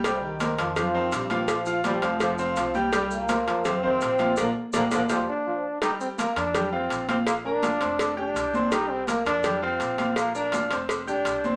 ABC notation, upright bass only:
X:1
M:4/4
L:1/8
Q:1/4=166
K:Fdor
V:1 name="Upright bass" clef=bass
C,,3 F,,3 B,,,2- | B,,,3 F,,,3 C,,2- | C,,3 F,,3 B,,,2 | B,,, z B,,, B,,, F,, z3 |
z3 F,,3 B,,,2- | B,,,3 F,,,3 C,,2- | C,,3 F,,3 B,,,2- | B,,,3 F,,,3 C,,2 |]